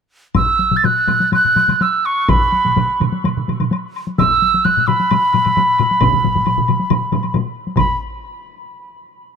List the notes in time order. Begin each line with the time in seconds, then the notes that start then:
0.35 E6, taiko, taiko low-mid, taiko high, high woodblock
0.59 taiko high
0.71 taiko low-mid, taiko high
0.76 A6
0.83 F#6, taiko low-mid, taiko high, high woodblock
1.07 taiko low-mid, taiko high, high woodblock
1.20 taiko high
1.32 F#6, taiko low-mid, taiko high, high woodblock
1.45 taiko low-mid
1.56 taiko low-mid, taiko high, high woodblock
1.68 taiko low-mid, taiko high, high woodblock
1.81 E6, taiko high, high woodblock
2.05 C#6, high woodblock
2.28 B5, taiko, taiko mid, taiko high, high woodblock
2.52 taiko high
2.65 taiko mid, taiko high
2.76 taiko mid, taiko high, high woodblock
3.00 taiko mid, taiko high, high woodblock
3.12 taiko high
3.24 taiko mid, taiko high, high woodblock
3.37 taiko mid
3.48 taiko mid, taiko high, high woodblock
3.60 taiko mid, taiko high, high woodblock
3.71 taiko high, high woodblock
3.96 high woodblock
4.07 taiko high
4.18 E6, taiko, taiko low-mid, taiko high, high woodblock
4.42 taiko high
4.54 taiko high
4.65 F#6, taiko low-mid, taiko high, high woodblock
4.77 taiko low-mid
4.87 B5, taiko low-mid, taiko high, high woodblock
5.00 taiko high
5.11 taiko low-mid, taiko high, high woodblock
5.33 taiko low-mid, taiko high, high woodblock
5.45 taiko low-mid, taiko high, high woodblock
5.56 taiko low-mid, taiko high, high woodblock
5.78 taiko low-mid, high woodblock
5.91 taiko high
6.01 taiko, taiko low-mid, taiko mid, taiko high, high woodblock
6.13 taiko low-mid, taiko mid
6.24 taiko low-mid, taiko mid, taiko high
6.35 taiko low-mid, taiko mid, taiko high
6.46 taiko low-mid, taiko mid, taiko high, high woodblock
6.58 taiko low-mid, taiko mid
6.68 taiko low-mid, taiko mid, taiko high, high woodblock
6.79 taiko high
6.90 taiko low-mid, taiko mid, taiko high, high woodblock
7.12 taiko low-mid, taiko mid, taiko high, high woodblock
7.23 taiko high, high woodblock
7.34 taiko low-mid, taiko mid, taiko high, high woodblock
7.67 taiko high
7.77 B5, taiko, taiko low-mid, taiko mid, taiko high, high woodblock